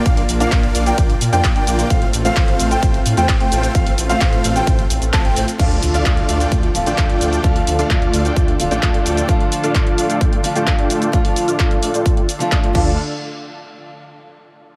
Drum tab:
CC |----------------|----------------|----------------|x---------------|
RD |x---x---x---x---|x---x---x---x---|x---x---x---x---|----------------|
HH |xooxxxoxxxoxxxox|xxoxxxoxxxoxxxox|xooxxxoxxxoxxxox|xxoxxxoxxxoxxxox|
SH |x-xxx-xxx-xxx-xx|x-xxx-xxx-xxx-xx|x-xxx-xxx-xxx-xx|x-xxx-xxx-xxx-xx|
CP |----x-------x---|----x-------x---|----x-------x---|----x-------x---|
BD |o---o---o---o---|o---o---o---o---|o---o---o---o---|o---o---o---o---|

CC |----------------|----------------|--------------x-|----------------|
RD |----------------|----------------|----------------|----------------|
HH |xooxxxoxxxoxxxox|xxoxxxoxxxoxxxox|xooxxxoxxxoxxx--|----------------|
SH |x-xxx-xxx-xxx-xx|x-xxx-xxx-xxx-xx|x-xxx-xxx-xxx---|----------------|
CP |----x-------x---|----x-------x---|----x-------x---|----------------|
BD |o---o---o---o---|o---o---o---o---|o---o---o---o-o-|----------------|